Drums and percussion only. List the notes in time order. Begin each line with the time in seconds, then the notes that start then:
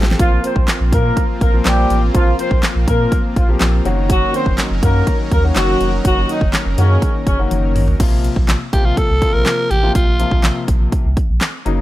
0.03 snare
0.11 snare
0.19 kick, closed hi-hat
0.44 closed hi-hat
0.56 kick
0.68 snare, clap, closed hi-hat
0.93 kick, closed hi-hat
1.17 kick, closed hi-hat
1.41 kick, closed hi-hat
1.65 snare, clap, closed hi-hat
1.90 closed hi-hat
2.15 kick, closed hi-hat
2.39 closed hi-hat
2.51 kick
2.63 snare, clap, closed hi-hat
2.88 kick, closed hi-hat
3.12 kick, closed hi-hat
3.36 kick, closed hi-hat
3.61 snare, clap, closed hi-hat
3.85 closed hi-hat
4.10 kick, closed hi-hat
4.34 closed hi-hat
4.46 kick
4.58 snare, clap, closed hi-hat
4.83 kick, closed hi-hat
5.07 kick, closed hi-hat
5.32 kick, closed hi-hat
5.56 snare, clap, closed hi-hat
5.81 closed hi-hat
6.05 kick, closed hi-hat
6.29 closed hi-hat
6.41 kick
6.53 snare, clap, closed hi-hat
6.78 closed hi-hat
7.02 kick, closed hi-hat
7.27 kick, closed hi-hat
7.51 closed hi-hat, high tom
7.76 mid tom, open hi-hat
7.88 floor tom
8.00 kick, closed hi-hat, crash
8.24 closed hi-hat
8.36 kick
8.49 snare, clap, closed hi-hat
8.73 kick, closed hi-hat
8.97 kick, closed hi-hat
9.22 kick, closed hi-hat
9.46 snare, clap, closed hi-hat
9.71 closed hi-hat
9.95 kick, closed hi-hat
10.20 closed hi-hat
10.31 kick
10.44 snare, clap, closed hi-hat
10.68 kick, closed hi-hat
10.92 kick, closed hi-hat
11.17 kick, closed hi-hat
11.41 snare, clap, closed hi-hat
11.66 closed hi-hat